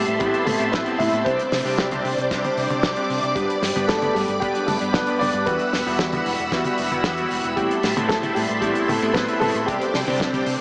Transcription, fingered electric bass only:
0.07 0.18 A2 loud
0.21 0.31 A1 medium
0.47 0.57 A2 medium
0.60 0.70 A2 medium
0.99 1.10 A2 medium
1.13 1.23 A2 loud
1.26 1.36 C2 loud
1.52 1.62 C3 loud
1.65 1.75 C3 loud
1.79 1.99 C2 medium
2.05 2.15 C3 loud
2.18 2.28 C3 loud
2.57 2.67 C3 loud
2.70 2.81 C3 medium
3.10 3.20 C3 medium
3.23 3.33 C3 medium
3.36 3.46 G1 loud
3.62 3.73 G2 loud
3.76 3.86 G2 loud
3.90 4.10 G1 medium
4.15 4.25 G2 loud
4.28 4.39 G2 loud
4.42 4.52 G1 medium
4.68 4.78 G2 medium
4.81 4.91 G2 medium
4.94 5.04 G1 loud
5.21 5.31 G2 medium
5.34 5.44 G2 loud
5.47 5.57 E2 loud
5.73 5.83 E1 loud
5.87 5.97 E1 loud
5.99 6.19 E2 medium
6.26 6.36 E1 loud
6.39 6.49 E1 loud
6.52 6.62 E2 loud
6.79 6.89 E1 medium
6.92 7.02 E1 loud
7.04 7.25 E2 medium
7.31 7.41 E1 medium
7.45 7.55 E1 medium
7.57 7.67 A1 loud
7.84 7.94 A2 loud
7.97 8.07 A2 loud
8.10 8.30 A1 medium
8.37 8.47 A2 loud
8.50 8.60 A2 loud
8.62 8.72 A1 medium
8.89 8.99 A2 loud
9.02 9.12 A2 medium
9.15 9.25 A1 loud
9.42 9.52 A2 medium
9.55 9.65 A2 loud
9.68 9.78 C2 loud
9.94 10.04 C3 loud
10.07 10.17 C3 loud
10.47 10.57 C3 loud

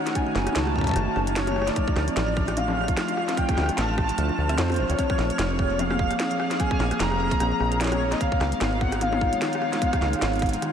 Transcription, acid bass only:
0.35 0.49 F#1 loud
0.56 0.90 C#2 medium
0.96 1.09 F#1 medium
1.16 1.71 F#1 medium
1.96 2.10 D2 medium
2.17 2.92 A1 medium
3.57 3.71 D2 loud
3.78 4.12 A1 medium
4.18 4.31 D2 medium
4.38 4.58 D2 medium
4.58 4.80 F2 loud
4.78 4.85 A1 medium
4.90 4.95 D2 medium
5.19 5.32 A#1 medium
5.39 6.14 F1 medium
6.80 6.93 A#1 loud
7.00 7.35 F1 medium
7.40 7.53 A#1 medium
7.60 8.15 A#1 medium
8.41 8.54 C#2 loud
8.61 9.36 G#1 medium
10.02 10.15 C#2 loud
10.22 10.57 G#1 medium

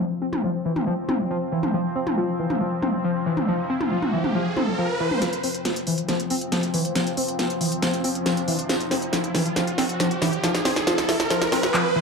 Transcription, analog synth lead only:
0.22 0.26 C4 medium
0.43 0.50 F3 medium
0.65 0.72 E3 medium
0.87 0.94 F3 medium
1.09 1.13 C4 medium
1.30 1.37 F3 medium
1.52 1.59 E3 medium
1.74 1.81 F3 medium
1.96 2.00 C4 medium
2.17 2.24 F3 medium
2.39 2.46 E3 medium
2.61 2.68 F3 medium
2.83 2.87 C4 medium
3.04 3.11 F3 medium
3.26 3.33 E3 medium
3.48 3.55 F3 medium
3.70 3.74 C4 medium
3.91 3.98 F3 medium
4.13 4.20 E3 medium
4.35 4.41 F3 medium
4.57 4.61 C4 medium
4.78 4.85 F3 medium
5.00 5.07 E3 medium
5.22 5.29 F3 medium
5.44 5.48 C4 medium
5.65 5.72 F3 medium
5.87 5.94 E3 medium
6.09 6.16 F3 medium
6.31 6.34 C4 medium
6.52 6.59 F3 medium
6.74 6.81 E3 medium
6.96 7.02 F3 medium
7.17 7.21 C4 medium
7.39 7.46 F3 medium
7.61 7.67 E3 medium
7.82 7.89 F3 medium
8.04 8.08 C4 medium
8.26 8.33 F3 medium
8.48 8.54 E3 medium
8.69 8.76 F3 medium
8.91 8.95 C4 medium
9.13 9.20 F3 medium
9.35 9.42 E3 medium
9.57 9.63 F3 medium
9.78 9.82 C4 medium
10.00 10.07 F3 medium
10.22 10.28 E3 medium
10.44 10.50 F3 medium
10.65 10.69 C4 medium
10.87 10.94 F3 medium
11.09 11.15 E3 medium
11.30 11.37 F3 medium
11.52 11.56 C4 medium
11.74 11.81 F3 medium
11.96 12.01 E3 medium

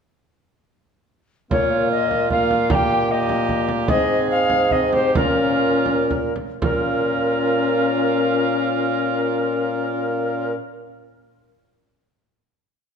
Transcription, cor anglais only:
1.51 2.27 F4 medium
2.31 2.69 F4 medium
2.71 3.09 G4 medium
3.11 3.91 G4 medium
3.89 4.72 G#4 medium
4.72 4.95 G#4 soft
4.94 5.18 G4 soft
5.17 6.36 F4 medium
6.62 10.54 F4 medium

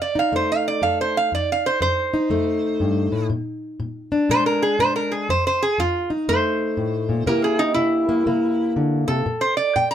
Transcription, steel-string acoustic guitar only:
0.00 0.29 F2 medium
0.15 1.30 D#4 medium
0.32 0.78 F2 medium
0.32 1.29 A3 medium
0.82 1.28 F2 medium
0.82 1.29 A4 medium
1.32 1.78 F2 medium
1.81 2.27 F2 medium
2.14 3.28 D#4 medium
2.30 2.76 F2 medium
2.30 3.28 A3 medium
2.80 3.12 G2 medium
3.12 3.30 A2 medium
3.30 3.76 A#2 medium
3.80 4.26 A#2 medium
4.12 4.78 D4 medium
4.29 4.75 A#2 medium
4.29 5.29 G#3 medium
4.79 5.25 A#2 medium
4.79 5.26 D4 medium
5.29 5.75 F2 medium
5.78 6.24 F2 medium
6.10 7.25 D#4 medium
6.28 6.74 F2 medium
6.28 7.26 A3 medium
6.77 7.09 A2 medium
7.09 7.26 A#2 medium
7.26 7.73 C3 medium
7.26 9.24 E3 medium
7.26 8.08 A#3 medium
7.26 9.25 E4 medium
7.26 9.25 G4 medium
7.77 8.23 C3 medium
8.09 8.26 A#3 medium
8.26 8.73 C3 medium
8.26 9.24 A#3 medium
8.76 9.08 D3 medium
9.08 9.26 C3 medium
9.26 9.72 A#2 medium
9.76 9.95 A#2 medium

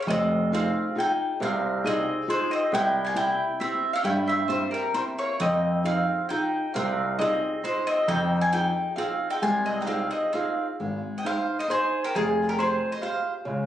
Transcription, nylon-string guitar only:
0.07 0.51 F3 medium
0.52 0.88 D#4 soft
0.52 0.88 F4 soft
0.52 0.88 G#4 soft
0.95 1.32 D#4 soft
0.95 1.32 F4 soft
0.95 1.33 G#4 medium
1.40 1.84 C3 medium
1.84 2.20 D#4 soft
1.84 2.20 F4 soft
1.84 2.21 G#4 soft
2.28 2.64 D#4 soft
2.28 2.64 F4 soft
2.28 2.64 G#4 medium
2.72 3.15 C3 medium
3.14 3.51 C4 soft
3.14 3.51 E4 soft
3.14 3.52 G4 medium
3.60 3.96 C4 soft
3.60 3.96 E4 soft
3.60 3.96 G4 soft
4.04 4.47 G3 medium
4.48 4.85 C4 soft
4.48 4.85 E4 soft
4.48 4.85 G4 soft
4.94 5.30 C4 soft
4.94 5.31 E4 soft
4.94 5.31 G4 soft
5.40 5.84 F3 medium
5.84 6.21 D#4 soft
5.84 6.21 F4 soft
5.84 6.21 G#4 soft
6.30 6.66 D#4 soft
6.30 6.66 F4 soft
6.30 6.66 G#4 medium
6.75 7.18 C3 medium
7.19 7.55 D#4 soft
7.19 7.55 F4 soft
7.19 7.55 G#4 soft
7.63 7.99 D#4 soft
7.63 7.99 F4 soft
7.63 7.99 G#4 medium
8.09 8.51 F3 medium
8.53 8.88 D#4 soft
8.53 8.88 F4 soft
8.53 8.88 G#4 soft
8.97 9.32 D#4 soft
8.97 9.32 F4 medium
8.97 9.33 G#4 medium
9.42 9.85 G#3 medium
9.87 10.24 D#4 soft
9.87 10.24 F4 soft
9.87 10.24 G#4 soft
10.34 10.70 D#4 soft
10.34 10.71 F4 soft
10.34 10.71 G#4 soft
10.80 11.23 G#3 medium
11.24 11.60 D#4 soft
11.24 11.60 G#4 soft
11.24 11.61 C5 soft
11.68 12.04 D#4 soft
11.68 12.05 G#4 soft
11.68 12.05 C5 soft
12.15 12.58 F3 medium
12.59 12.94 F4 soft
12.59 12.95 G#4 medium
12.59 12.94 G5 soft
13.02 13.37 F4 soft
13.02 13.38 G4 soft
13.02 13.38 G#4 medium
13.45 13.66 C#3 medium

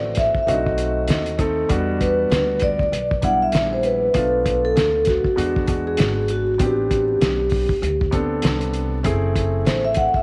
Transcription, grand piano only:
0.00 0.36 A3 medium
0.00 0.36 C4 medium
0.00 0.37 E4 medium
0.00 0.37 F#4 medium
0.46 1.30 A3 medium
0.46 1.31 C4 medium
0.46 0.55 D4 medium
0.46 1.31 F#4 medium
0.54 1.34 D#4 medium
1.38 1.66 A3 medium
1.38 1.67 C4 medium
1.38 1.67 D#4 medium
1.38 1.67 A4 medium
1.68 2.81 G3 medium
1.68 2.81 B3 medium
1.68 2.81 D4 medium
1.68 2.82 F#4 medium
3.21 4.06 G3 medium
3.21 4.06 B3 medium
3.21 4.06 D4 medium
3.21 4.07 E4 medium
4.13 5.25 A3 medium
4.13 5.26 B3 medium
4.13 5.26 D4 medium
4.13 5.27 F4 medium
5.35 5.64 G#3 medium
5.35 5.64 B3 medium
5.35 5.65 D4 medium
5.35 5.65 F#4 medium
5.66 6.51 G#3 medium
5.66 6.51 B3 medium
5.66 6.51 D4 medium
5.66 6.52 F#4 medium
6.58 7.70 B3 medium
6.58 7.71 C4 medium
6.58 7.71 D4 medium
6.58 7.71 G4 medium
8.11 8.95 B3 medium
8.11 8.96 C4 medium
8.11 8.96 D4 medium
8.11 8.97 A4 medium
9.03 10.15 A3 medium
9.03 10.16 C4 medium
9.03 10.16 E4 medium
9.03 10.16 G#4 medium

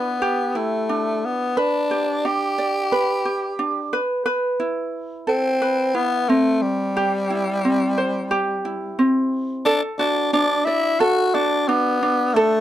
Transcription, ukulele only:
0.00 0.89 D4 medium
0.00 0.54 E4 medium
0.00 0.21 B4 medium
0.22 1.91 G4 medium
0.55 1.63 E4 medium
0.89 2.24 D4 medium
1.57 2.58 B4 medium
1.91 3.24 G4 medium
2.25 3.58 D4 medium
2.58 2.92 D5 medium
2.92 3.93 B4 medium
3.25 3.99 G4 medium
3.59 3.99 D4 medium
3.93 4.24 B4 medium
4.26 5.60 B4 medium
4.60 5.95 E4 medium
5.27 7.03 A4 medium
5.62 6.96 B4 medium
5.95 6.29 E4 medium
6.29 7.64 C4 medium
6.97 8.30 G4 medium
7.30 8.64 E4 medium
7.65 8.97 C4 medium
7.98 9.73 C5 medium
8.31 9.65 G4 medium
8.65 9.73 E4 medium
8.99 9.73 C4 medium
9.66 11.00 A4 medium
9.99 11.34 F#4 medium
10.33 11.67 D4 medium
10.67 11.00 D5 medium
11.00 12.36 A4 medium
11.35 12.61 F#4 medium
11.69 12.01 D4 medium
12.03 12.61 D4 medium
12.36 12.61 A4 medium

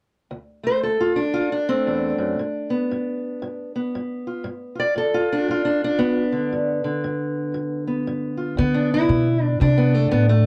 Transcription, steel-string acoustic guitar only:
0.31 0.79 D2 medium
0.63 1.00 A3 soft
0.63 0.83 C5 medium
0.83 1.32 D2 medium
0.83 1.16 A4 medium
1.00 1.18 F4 medium
1.16 1.51 D4 medium
1.34 1.84 D2 medium
1.34 1.52 F4 medium
1.52 1.85 D4 medium
1.69 2.40 A3 soft
1.69 2.39 C4 medium
1.86 2.18 E2 medium
1.86 3.94 D4 medium
2.18 2.39 F#2 medium
2.39 2.87 G2 medium
2.70 3.75 B3 soft
2.91 3.39 G2 medium
3.42 3.90 G2 medium
3.76 4.78 B3 soft
3.95 4.42 G2 medium
4.27 4.47 F4 soft
4.44 4.93 G2 medium
4.75 5.14 F4 soft
4.80 4.97 D5 medium
4.96 5.44 G2 medium
4.96 5.32 A4 medium
5.14 5.49 F4 medium
5.32 5.64 D4 medium
5.48 5.96 G2 medium
5.48 6.19 F4 medium
5.65 5.83 D4 medium
5.84 6.53 D4 medium
5.99 6.48 G2 medium
5.99 7.86 B3 medium
6.32 6.83 D3 soft
6.53 7.00 G2 medium
6.84 10.46 D3 soft
7.04 7.51 G2 medium
7.54 8.02 G2 medium
7.87 8.56 B3 soft
8.07 8.54 G2 medium
8.37 8.56 F4 soft
8.57 9.05 D2 medium
8.57 9.27 B3 medium
8.74 8.92 D4 medium
8.94 9.43 E4 medium
9.10 9.57 D2 medium
9.43 9.61 D4 medium
9.60 10.08 D2 medium
9.60 10.30 D4 medium
9.78 9.94 B3 medium
9.94 10.11 A3 medium
10.09 10.46 D2 medium
10.09 10.29 B3 medium
10.29 10.46 A3 medium

